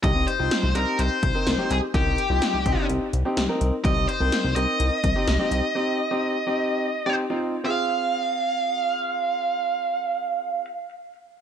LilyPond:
<<
  \new Staff \with { instrumentName = "Lead electric guitar" } { \time 4/4 \key c \phrygian \tempo 4 = 126 ees''8 c''4 bes'8 c''4. aes'8 | g'2 r2 | ees''8 c''4 ees''2~ ees''8~ | ees''2. r4 |
f''1~ | f''1 | }
  \new Staff \with { instrumentName = "Grand piano" } { \time 4/4 \key c \phrygian <c' ees' g'>8 r16 <c' ees' f'>8 r16 <c' ees' g'>8. r8 <c' ees' bes'>16 r16 <c' ees' g'>8 r16 | <c' ees' bes'>8 r16 <c' ees' f'>8 r16 <c' ees' g'>8. r8 <c' ees' g'>16 r16 <c' ees' bes'>8 r16 | <c' ees' g'>8 r16 <c' ees' bes'>8 r16 <c' ees' bes'>8. r8 <c' ees' g'>16 r16 <c' ees' g'>8 r16 | <c' ees' g'>8 r16 <c' ees' g'>8 r16 <c' ees' g'>8. r8 <c' ees' g'>16 r16 <c' ees' f'>8 r16 |
<c' f' aes'>1~ | <c' f' aes'>1 | }
  \new Staff \with { instrumentName = "Analog synth bass" } { \clef bass \time 4/4 \key c \phrygian c,16 c,16 r16 c,16 r16 c,16 c,16 r16 c,16 r16 c,16 r16 c,16 r16 c,16 r16 | c,16 c,16 r16 c,16 r16 c,16 c,16 r16 c,16 r16 c,16 r16 c,16 r16 c,16 r16 | c,16 c,16 r16 c,16 r16 c,16 c,16 r16 c,16 r16 c,16 r16 c,16 r16 c,16 r16 | r1 |
r1 | r1 | }
  \new DrumStaff \with { instrumentName = "Drums" } \drummode { \time 4/4 <hh bd>8 hh8 <hh sn>8 hh8 hh8 <hh bd>8 <hh sn>8 hh8 | <hh bd>8 hh8 <hh sn>8 <hh bd>8 hh8 hh8 <hh sn>8 hh8 | <hh bd>8 hh8 <hh sn>8 hh8 hh8 <hh bd>8 <hh sn>8 hh8 | r4 r4 r4 r4 |
r4 r4 r4 r4 | r4 r4 r4 r4 | }
>>